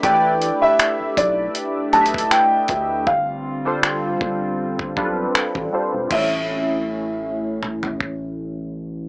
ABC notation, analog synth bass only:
X:1
M:4/4
L:1/16
Q:"Swing 16ths" 1/4=79
K:Gmix
V:1 name="Analog synth bass" clef=bass
A,,,3 z2 B,,, B,,,2 z2 B,,,2 z2 D,,2 | G,,,6 G,,,4 B,,,2 A,,, A,,, z E,,, | A,,,16 |]